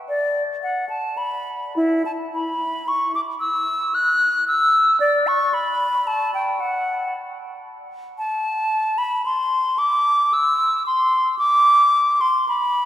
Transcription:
0.08 D5
0.63 F#5
0.89 A5
1.17 B5
1.76 E4
2.05 A5
2.34 B5
2.88 C#6
3.15 D6
3.40 E6
3.95 F#6
4.48 E6
5.00 D5
5.27 C#6
5.54 B5
6.07 A5
6.34 G5
6.60 F#5
8.18 A5
8.98 B5
9.25 C6
9.78 D6
10.33 E6
10.86 C6
11.39 D6
12.21 C6
12.48 B5

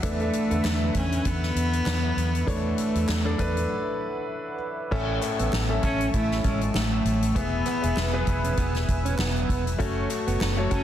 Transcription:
Already playing: E5 F#5
0.03 E2 E3 A3 D4 A4 B4 E5, kick, closed hi-hat
0.20 D4 A4 E5, closed hi-hat
0.33 closed hi-hat
0.50 E2 D3 A4 E5, closed hi-hat
0.64 E2, snare, clap, closed hi-hat
0.94 E2 C#4, kick, closed hi-hat
1.12 closed hi-hat
1.25 E2 B3, kick, closed hi-hat
1.43 snare
1.55 E2, closed hi-hat
1.73 closed hi-hat
1.86 E2, snare, clap, closed hi-hat
2.17 E2, closed hi-hat
2.35 closed hi-hat
2.46 E2 E3 A3 D4 A4 C#5, kick, closed hi-hat
2.78 closed hi-hat
2.95 E2, closed hi-hat
3.08 E2, snare, clap, closed hi-hat
3.25 D4 A4 D5
3.38 E2 D4 A4 B4, kick, closed hi-hat
3.57 closed hi-hat
4.91 A1 A2 C#4 A4 C#5 E5 A5 E6, kick, crash
5.22 clap, closed hi-hat
5.39 A1 B3, closed hi-hat
5.53 A1, snare, clap
5.69 C#4 A4 E5
5.82 A1 C#4 E5 A5, kick, closed hi-hat
6.01 closed hi-hat
6.14 A1 A3 E4, kick, closed hi-hat
6.31 snare
6.44 A1 G#3 C#4, kick, closed hi-hat
6.61 closed hi-hat
6.74 A1 A3, snare, clap
7.05 A1, closed hi-hat
7.23 closed hi-hat
7.35 E3 B3 G#4 B4 E5 G#5, kick, closed hi-hat
7.66 B3, clap, closed hi-hat
7.82 E1 B3 G#4 E5, closed hi-hat
7.96 E1 B3, snare, clap
8.13 B3 G#4 B4
8.27 E1, kick, closed hi-hat
8.44 C#4, closed hi-hat
8.57 E1 B3, kick, closed hi-hat
8.75 snare, closed hi-hat
8.88 E1, kick, closed hi-hat
9.05 C#4, closed hi-hat
9.18 E1 B3, snare, clap
9.36 closed hi-hat
9.49 E1, kick, closed hi-hat
9.67 closed hi-hat
9.79 F#1 A3 C#4 F#4 C#5 A5 C#6, kick, closed hi-hat
10.10 clap, closed hi-hat
10.27 F#1 B3, closed hi-hat
10.41 F#1, snare, clap
10.57 A3 F#4 C#5
10.70 F#1 F#3 C#4 F#4 A5, kick, closed hi-hat

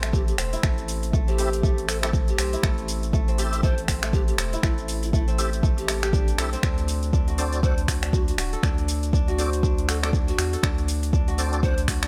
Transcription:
Already playing: A1 C4 G4, impact
0.03 A3, finger snap, closed hi-hat, shaker
0.13 G4, kick, shaker
0.28 G4, closed hi-hat, shaker
0.38 E1 C4, finger snap, open hi-hat, shaker
0.53 E4, closed hi-hat, shaker
0.63 A1 A3, finger snap, kick, shaker
0.78 closed hi-hat, shaker
0.88 open hi-hat, shaker
1.03 closed hi-hat, shaker
1.13 A3, kick, shaker
1.28 C4 G4, closed hi-hat, shaker
1.38 C4 E4 G4 A4 E5, open hi-hat, shaker
1.53 closed hi-hat, shaker
1.63 A3, kick, shaker
1.78 closed hi-hat, shaker
1.88 C4 A4, finger snap, open hi-hat, shaker
2.03 A3 C4 E4 G4 A4 E5, finger snap, closed hi-hat, shaker
2.13 kick, shaker
2.28 G4, closed hi-hat, shaker
2.38 B1 C4, finger snap, open hi-hat, shaker
2.53 E4, closed hi-hat, shaker
2.63 A1 A3, finger snap, kick, shaker
2.78 closed hi-hat, shaker
2.88 open hi-hat, shaker
3.03 closed hi-hat, shaker
3.13 A3, kick, shaker
3.28 C4, closed hi-hat, shaker
3.38 C4 E4 G4 A4 E5, open hi-hat, shaker
3.53 closed hi-hat, shaker
3.63 A3 C4 E4 G4 A4 C5 G5, kick, shaker
3.78 closed hi-hat, shaker
3.88 C4, finger snap, kick, open hi-hat, shaker
4.03 A3, finger snap, closed hi-hat, shaker
4.13 G4, kick, shaker
4.28 G4, closed hi-hat, shaker
4.38 E1 C4, finger snap, open hi-hat, shaker
4.53 E4, closed hi-hat, shaker
4.63 A1 A3 E4, finger snap, kick, shaker
4.78 closed hi-hat, shaker
4.88 open hi-hat, shaker
5.03 E4, closed hi-hat, shaker
5.13 A3 E4, kick, shaker
5.28 C4, closed hi-hat, shaker
5.38 C4 E4 G4 A4 E5, open hi-hat, shaker
5.53 closed hi-hat, shaker
5.63 A3, kick, shaker
5.78 G4, closed hi-hat, shaker
5.88 A3, finger snap, open hi-hat, shaker
6.03 G4, finger snap, closed hi-hat, shaker
6.13 D4, kick, shaker
6.28 closed hi-hat, shaker
6.38 B1 C4 E4 G4 A4 E5, finger snap, open hi-hat, shaker
6.53 C4, closed hi-hat, shaker
6.63 D2 D4, finger snap, kick, shaker
6.78 closed hi-hat, shaker
6.88 open hi-hat, shaker
7.03 closed hi-hat, shaker
7.13 D4, kick, shaker
7.28 F#4, closed hi-hat, shaker
7.38 C4 D4 F#4 A4 C5 D5, open hi-hat, shaker
7.53 closed hi-hat, shaker
7.63 C4 D4 F#4 A4 C5 F#5, kick, shaker
7.78 closed hi-hat, shaker
7.88 F#4, finger snap, kick, open hi-hat, shaker
8.03 D4, finger snap, closed hi-hat, shaker
8.13 F#4, kick, shaker
8.28 F#4, closed hi-hat, shaker
8.38 D1 F#4, finger snap, open hi-hat, shaker
8.53 A4, closed hi-hat, shaker
8.63 D2 D4, finger snap, kick, shaker
8.78 closed hi-hat, shaker
8.88 open hi-hat, shaker
9.03 closed hi-hat, shaker
9.13 D4, kick, shaker
9.28 F#4, closed hi-hat, shaker
9.38 C4 D4 F#4 A4 C5 D5, open hi-hat, shaker
9.53 closed hi-hat, shaker
9.63 D4, kick, shaker
9.78 closed hi-hat, shaker
9.88 F#4 A4, finger snap, open hi-hat, shaker
10.03 C4 D4 F#4 A4 D5, finger snap, closed hi-hat, shaker
10.13 kick, shaker
10.28 F#4, closed hi-hat, shaker
10.38 E2 F#4, finger snap, open hi-hat, shaker
10.53 A4, closed hi-hat, shaker
10.63 D2 D4, finger snap, kick, shaker
10.78 closed hi-hat, shaker
10.88 open hi-hat, shaker
11.03 closed hi-hat, shaker
11.13 D4, kick, shaker
11.28 F#4, closed hi-hat, shaker
11.38 C4 D4 F#4 A4 C5 D5, open hi-hat, shaker
11.53 closed hi-hat, shaker
11.63 C4 D4 F#4 A4 C5 F#5, kick, shaker
11.78 closed hi-hat, shaker
11.88 F#4, finger snap, kick, open hi-hat, shaker
12.03 D4, finger snap, closed hi-hat, shaker

